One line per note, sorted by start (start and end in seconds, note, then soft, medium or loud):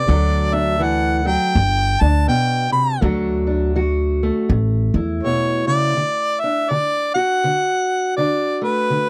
0.00 0.55 D5 medium
0.07 1.36 D2 medium
0.07 0.76 D3 medium
0.07 0.79 F#3 medium
0.07 1.56 A3 medium
0.07 0.52 D4 medium
0.07 1.53 A4 medium
0.53 1.53 D4 medium
0.53 0.85 E5 medium
0.80 1.25 E3 medium
0.80 1.19 F#5 medium
1.19 1.28 F#5 medium
1.25 1.55 F#3 medium
1.25 2.02 G5 medium
1.55 1.94 G1 medium
1.55 2.24 G2 medium
2.01 2.26 D2 medium
2.01 3.00 D4 medium
2.01 2.28 A5 medium
2.27 2.71 B2 medium
2.27 2.71 G5 medium
2.71 3.01 C3 medium
2.71 3.00 B5 medium
3.01 4.29 D2 loud
3.01 3.70 D3 medium
3.01 3.74 F#3 medium
3.01 4.21 A3 medium
3.01 3.46 D4 medium
3.01 3.75 F#4 medium
3.47 4.46 D4 medium
3.76 4.44 F#3 medium
3.76 4.50 F#4 medium
4.23 7.45 A3 medium
4.49 4.88 A1 loud
4.49 5.17 A2 medium
4.94 5.19 E2 medium
4.94 5.94 E4 medium
5.23 5.67 B2 medium
5.23 5.65 C#5 medium
5.67 5.96 C#3 medium
5.67 6.41 D5 medium
5.97 6.65 D3 medium
6.40 8.18 D4 medium
6.40 6.71 E5 medium
6.70 7.38 D3 medium
6.70 7.14 D5 medium
7.14 9.09 F#4 medium
7.14 8.13 F#5 medium
7.44 8.12 D3 medium
8.16 8.85 D3 medium
8.16 9.09 D4 medium
8.16 8.59 D5 medium
8.61 9.09 A3 medium
8.61 9.09 B4 medium
8.90 9.09 D3 medium